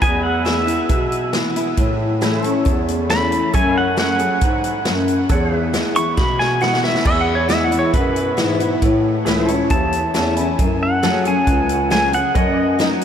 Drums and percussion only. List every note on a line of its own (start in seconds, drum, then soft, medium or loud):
0.02 kick loud
0.02 closed hi-hat medium
0.46 snare loud
0.46 closed hi-hat medium
0.68 closed hi-hat medium
0.89 kick loud
0.89 closed hi-hat medium
1.12 closed hi-hat medium
1.33 snare loud
1.33 closed hi-hat medium
1.56 closed hi-hat medium
1.77 kick loud
1.77 closed hi-hat medium
2.22 snare loud
2.22 closed hi-hat medium
2.44 closed hi-hat medium
2.66 kick loud
2.66 closed hi-hat medium
2.88 closed hi-hat medium
3.10 snare loud
3.10 closed hi-hat medium
3.32 closed hi-hat medium
3.54 kick loud
3.54 closed hi-hat medium
3.97 snare loud
3.97 closed hi-hat medium
4.19 closed hi-hat medium
4.41 kick loud
4.41 closed hi-hat medium
4.64 closed hi-hat medium
4.85 snare loud
4.85 closed hi-hat medium
5.08 closed hi-hat medium
5.30 kick loud
5.30 closed hi-hat medium
5.74 snare loud
5.74 closed hi-hat medium
5.96 closed hi-hat medium
6.17 kick loud
6.17 snare medium
6.40 snare medium
6.62 snare medium
6.73 snare medium
6.84 snare medium
6.95 snare medium
7.05 kick loud
7.05 crash medium
7.50 snare loud
7.50 closed hi-hat medium
7.72 closed hi-hat medium
7.94 kick loud
7.94 closed hi-hat medium
8.16 closed hi-hat medium
8.38 snare loud
8.38 closed hi-hat medium
8.60 closed hi-hat medium
8.82 kick loud
8.82 closed hi-hat medium
9.27 snare loud
9.27 closed hi-hat medium
9.48 closed hi-hat medium
9.70 kick loud
9.70 closed hi-hat medium
9.92 closed hi-hat medium
10.15 snare loud
10.15 closed hi-hat medium
10.37 closed hi-hat medium
10.59 kick loud
10.59 closed hi-hat medium
11.03 snare loud
11.03 closed hi-hat medium
11.25 closed hi-hat medium
11.47 kick loud
11.47 closed hi-hat medium
11.69 closed hi-hat medium
11.91 snare loud
11.91 closed hi-hat medium
12.13 closed hi-hat medium
12.35 kick loud
12.35 closed hi-hat medium
12.80 snare loud
12.80 closed hi-hat medium
13.01 closed hi-hat medium